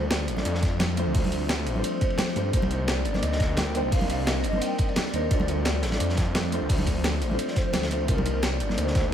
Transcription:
Already playing: detuned saw bass D2, ambient pad F3 C4 C5, grand piano A3 D4 F4 C5, soft synth lead C5
0.11 soft synth lead D5, snare, closed hi-hat, ride
0.28 detuned saw bass A1, closed hi-hat, ride
0.36 grand piano A3 D4 F4 D5, snare, high conga
0.45 detuned saw bass F2, closed hi-hat, ride
0.55 snare
0.63 kick, snare, closed hi-hat, ride
0.80 snare, closed hi-hat, ride, high conga
0.96 grand piano A3 D4 F4 C5, closed hi-hat, ride
1.07 detuned saw bass D2
1.12 grand piano A3 D4, kick, closed hi-hat, open hi-hat
1.16 grand piano F4 C5
1.24 ride, high conga
1.32 closed hi-hat, ride
1.49 snare, closed hi-hat, ride
1.66 detuned saw bass A1, closed hi-hat, ride
1.73 grand piano A3 D4, high conga
1.77 grand piano F4 C5
1.84 closed hi-hat, ride
2.01 soft synth lead C5, kick, closed hi-hat, ride
2.10 ride
2.18 snare, closed hi-hat, ride, high conga
2.28 snare
2.34 detuned saw bass G2, grand piano A3 D4 F4 C5, closed hi-hat, ride
2.50 detuned saw bass C2, ambient pad G3 A#4, grand piano A#3 D4, soft synth lead C5, kick, closed hi-hat, ride
2.55 grand piano D#4 C5
2.62 ride, high conga
2.70 closed hi-hat, ride
2.88 soft synth lead D5, snare, closed hi-hat, ride
3.05 detuned saw bass G1, closed hi-hat, ride
3.13 grand piano A#3 D4 D#4 D5, snare, high conga
3.23 detuned saw bass D2, soft synth lead D#5, closed hi-hat, ride
3.32 snare
3.40 kick, snare, closed hi-hat, ride
3.57 soft synth lead G5, snare, closed hi-hat, ride, high conga
3.73 grand piano A#3 D4 D#4 C5, closed hi-hat, ride
3.84 detuned saw bass C2
3.89 grand piano A#3 D4, soft synth lead F5, kick, closed hi-hat, open hi-hat
3.93 grand piano D#4 C5
4.01 ride, high conga
4.10 closed hi-hat, ride
4.27 soft synth lead D#5, snare, closed hi-hat, ride
4.44 detuned saw bass G1, closed hi-hat, ride
4.50 grand piano A#3 D4, high conga
4.55 grand piano D#4 C5
4.61 soft synth lead G5, closed hi-hat, ride
4.78 kick, closed hi-hat, ride
4.88 soft synth lead D5, ride
4.96 snare, closed hi-hat, ride, high conga
5.06 snare
5.12 detuned saw bass D#2, grand piano A#3 D4 D#4 C5, soft synth lead D#5, closed hi-hat, ride
5.28 detuned saw bass D2, ambient pad F3 C5, grand piano A3 D4, soft synth lead D5, kick, closed hi-hat, ride
5.32 grand piano F4 C5
5.40 ride, high conga
5.48 soft synth lead D5, closed hi-hat, ride
5.65 snare, closed hi-hat, ride
5.83 detuned saw bass A1, snare, closed hi-hat, ride
5.90 grand piano A3 D4 F4 D5, snare, ride, high conga
6.00 detuned saw bass F2, closed hi-hat, ride
6.09 snare
6.17 kick, snare, closed hi-hat, ride
6.35 snare, closed hi-hat, ride, high conga
6.51 grand piano A3 D4 F4 C5, closed hi-hat, ride
6.62 detuned saw bass D2
6.66 grand piano A3 D4, kick, closed hi-hat, open hi-hat
6.71 grand piano F4 C5
6.78 ride, high conga
6.86 kick, closed hi-hat, ride
7.04 snare, closed hi-hat, ride
7.22 detuned saw bass A1, closed hi-hat, ride
7.28 grand piano A3 D4, high conga
7.32 grand piano F4 C5
7.39 closed hi-hat, ride
7.48 soft synth lead D5, snare
7.56 soft synth lead C5, kick, snare, closed hi-hat, ride
7.73 detuned saw bass D2, snare, closed hi-hat, ride, high conga
7.83 snare, ride
7.89 grand piano A3 D4 F4 C5, closed hi-hat, ride
8.05 detuned saw bass C2, ambient pad G3 A#4 D6, grand piano A#3 D4, soft synth lead A#4, kick, closed hi-hat, ride
8.09 grand piano D#4 C5
8.18 ride, high conga
8.26 closed hi-hat, ride
8.43 soft synth lead D5, snare, closed hi-hat, ride
8.60 detuned saw bass G1, closed hi-hat, ride
8.68 grand piano A#3 D4 D#4 D5, snare, high conga
8.78 detuned saw bass D2, soft synth lead C5, closed hi-hat, ride
8.87 snare
8.95 kick, snare, closed hi-hat, ride

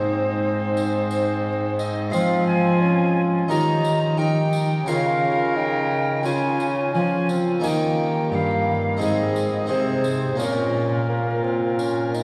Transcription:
Already playing: harpsichord G#2 G#3 C4 D#4, cello G#2, bassoon C4, viola D#4, recorder C5
0.77 tambourine
1.11 tambourine
1.78 recorder D#5, tambourine
2.10 cello F3, harpsichord F3 G#3 C4 F4, bassoon C4, viola F4, recorder F5, tambourine
2.47 recorder G#5
2.82 bassoon C#4
3.48 harpsichord D#3 D#4 A#4, cello D#3, bassoon D#4, viola G4, recorder A#5, tambourine
3.84 tambourine
4.17 harpsichord D#4 A#4, bassoon D#4, viola G4, recorder G5
4.53 tambourine
4.86 cello C#3, harpsichord C#3 F4 A#4, bassoon F4, viola A#4, recorder F5, tambourine
5.56 bassoon D#4, recorder G5
6.23 cello C#3, harpsichord C#3 F4, bassoon C#4, viola F4, recorder G#5, tambourine
6.60 tambourine
6.94 cello F3, harpsichord F3, bassoon C#4, viola F4, recorder G#5
7.29 bassoon C4, tambourine
7.60 cello D#3, harpsichord D#3 A#3 D#4 G4, bassoon A#3, viola G4, recorder G#5, tambourine
7.68 recorder G5
8.31 cello G2, harpsichord G2, recorder G5
8.35 recorder F5
8.97 harpsichord G#2 C4 D#4 G#4, bassoon C4, viola G#4
9.01 cello G#2, recorder D#5, tambourine
9.36 tambourine
9.66 harpsichord C3 C4 D#4 G#4, cello C3, bassoon C4
9.70 viola G#4, recorder C5
10.04 tambourine
10.35 cello A#2, harpsichord A#3 C#4 F4, bassoon C#4, viola F4, recorder A#4
10.40 harpsichord A#2, tambourine
11.09 bassoon A#3
11.43 bassoon C4
11.79 bassoon C#4, tambourine
12.14 bassoon D#4, tambourine

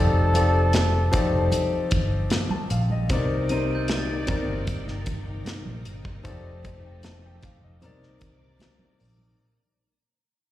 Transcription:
Already playing: fingered electric bass F1, grand piano F3 C4 D#4 G4 A4 D5, flugelhorn A4
0.33 grand piano F3 C4 D#4 G4 A4 D5, closed hi-hat, muted conga
0.73 snare, closed hi-hat, high conga
1.12 grand piano F3 C4 D#4 G4 A4 D5, kick, closed hi-hat
1.33 fingered electric bass F1
1.52 closed hi-hat, muted conga
1.91 fingered electric bass G1, kick, closed hi-hat, low conga
2.30 snare, closed hi-hat, high conga
2.51 grand piano A5, high conga
2.70 fingered electric bass A#1, grand piano F5, closed hi-hat
2.90 grand piano D#5, high conga
3.10 fingered electric bass C2, grand piano C3 C4 D#4 A#4 D5, string machine C3 A#3 D#4 D5, kick, closed hi-hat, muted conga
3.49 grand piano C3 C4 D#4 A#4 C5, glockenspiel D#7, closed hi-hat, muted conga
3.75 glockenspiel G6
3.88 snare, closed hi-hat, high conga
3.98 glockenspiel A6
4.27 grand piano C3 C4 D#4 A#4 D5, kick, closed hi-hat, low conga
4.48 fingered electric bass G1
4.67 kick, closed hi-hat, muted conga
4.88 snare
5.06 kick, closed hi-hat, low conga
5.45 snare, closed hi-hat, high conga
5.66 fingered electric bass A#1, high conga
5.85 fingered electric bass G1, closed hi-hat
6.05 kick, high conga
6.24 fingered electric bass F1, grand piano F3 C4 D#4 G4 A4 D5, string machine F3 A3, kick, closed hi-hat, muted conga
6.64 grand piano D#5, kick, closed hi-hat, muted conga
6.85 grand piano G5
7.03 grand piano A5, snare, closed hi-hat, high conga
7.26 grand piano G5
7.43 grand piano F5, kick, closed hi-hat, low conga
7.63 fingered electric bass F1, grand piano D#5
7.82 fingered electric bass C2, grand piano C3 C4 D#4 A#4 D5, string machine C3 A#3 D5, glockenspiel A#5, closed hi-hat, muted conga
8.03 snare
8.21 fingered electric bass C2, kick, closed hi-hat, low conga
8.60 snare, closed hi-hat, high conga
8.79 high conga
9.00 fingered electric bass A#1, open hi-hat
9.18 high conga

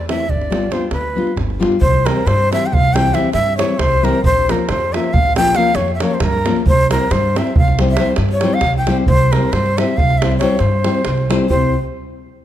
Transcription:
Already playing: upright bass E2
0.09 nylon-string guitar E3 A3 C4 E4, shakuhachi E5, davul high
0.20 davul high
0.28 upright bass G1, shakuhachi D5, davul low
0.41 davul high
0.50 nylon-string guitar G3 B3 D4 F4, davul high
0.63 davul high
0.71 nylon-string guitar G3 B3 D4 F4, shakuhachi C5, davul high
0.82 davul high
0.91 upright bass D2, shakuhachi B4, davul high
1.16 nylon-string guitar G3 B3 D4 F4
1.27 davul high
1.36 upright bass G1, davul high, davul low
1.50 davul high
1.59 nylon-string guitar G3 B3 D4 F4, davul high
1.72 davul high
1.81 upright bass C2, shakuhachi C5, davul low
2.05 nylon-string guitar E3 G3 C4 E4 G4, shakuhachi A#4, davul high
2.27 upright bass G2, shakuhachi C5, davul high
2.40 davul high
2.51 nylon-string guitar E3 G3 C4 E4 G4, shakuhachi E5, davul high
2.63 shakuhachi G5, davul high
2.72 upright bass C2, shakuhachi F5, davul low
2.84 davul high
2.94 nylon-string guitar E3 G3 C4 E4 G4, shakuhachi G5, davul high
3.05 davul high
3.13 nylon-string guitar E3 G3 C4 E4 G4, shakuhachi E5, davul high
3.33 upright bass G2, shakuhachi E5, davul high
3.47 davul high
3.57 nylon-string guitar E3 G3 C4 E4 G4, shakuhachi C#5, davul high
3.78 upright bass C2, shakuhachi C5, davul high, davul low
3.92 davul high
4.02 nylon-string guitar E3 G3 C4 E4 G4, shakuhachi A#4, davul high
4.15 davul high
4.24 upright bass A#1, shakuhachi C5, davul low
4.48 nylon-string guitar F3 A#3 C#4 F4 A#4, shakuhachi A#4, davul high
4.69 upright bass F2, shakuhachi C5, davul high
4.82 davul high
4.93 nylon-string guitar F3 A#3 C#4 F4 A#4, shakuhachi E5, davul high
5.04 davul high
5.13 upright bass A#1, shakuhachi F5, davul low
5.25 davul high
5.36 nylon-string guitar F3 A#3 C#4 F4 A#4, shakuhachi G5, davul high
5.55 nylon-string guitar F3 A#3 C#4 F4 A#4, shakuhachi F5, davul high
5.75 upright bass F2, shakuhachi C#5, davul high
5.88 davul high
5.94 shakuhachi E5
6.00 nylon-string guitar F3 A#3 C#4 F4 A#4, shakuhachi C#5, davul high
6.14 shakuhachi C5
6.20 upright bass G2, shakuhachi A#4, davul high, davul low
6.33 davul high
6.45 nylon-string guitar F3 A#3 C#4 F4 A#4, davul high
6.56 davul high
6.66 upright bass C2, shakuhachi C5, davul low
6.89 nylon-string guitar G3 C4 E4 G4 C5, shakuhachi A#4, davul high
7.11 upright bass G2, shakuhachi C5, davul high
7.34 nylon-string guitar G3 C4 E4 G4 C5, shakuhachi E5, davul high
7.47 davul high
7.55 upright bass C2, shakuhachi F5, davul low
7.68 davul high
7.79 nylon-string guitar G3 C4 E4 G4 C5, davul high
7.89 shakuhachi E5, davul high
7.97 nylon-string guitar G3 C4 E4 G4 C5, davul high
8.16 upright bass G2, davul high
8.29 shakuhachi C#5, davul high
8.41 nylon-string guitar G3 C4 E4 G4 C5, davul high
8.54 shakuhachi F5
8.61 upright bass C2, davul high, davul low
8.74 shakuhachi G5, davul high
8.87 nylon-string guitar G3 C4 E4 G4 C5, davul high
8.97 davul high
9.06 upright bass C2, shakuhachi C5, davul low
9.19 davul high
9.32 nylon-string guitar G3 C4, shakuhachi A#4, davul high
9.36 nylon-string guitar E4 G4 C5
9.43 davul high
9.52 upright bass G2, shakuhachi C5, davul high
9.66 davul high
9.78 nylon-string guitar G3 C4 E4 G4 C5, shakuhachi E5, davul high
9.97 upright bass C2, shakuhachi F5, davul low
10.10 davul high
10.18 nylon-string guitar G3, shakuhachi E5
10.22 nylon-string guitar C4 E4 G4 C5, davul high
10.32 davul high
10.38 nylon-string guitar G3 C4 E4, shakuhachi C#5, davul high
10.42 nylon-string guitar G4 C5
10.50 davul high
10.59 upright bass G2, shakuhachi C5, davul high
10.84 nylon-string guitar G3 C4 E4 G4 C5, davul high
10.95 davul high
11.05 upright bass C2, davul high
11.18 davul high
11.30 nylon-string guitar G3 C4 E4 G4 C5, davul high
11.49 upright bass C2, nylon-string guitar C4 E4 G4 C5, shakuhachi C5, davul low

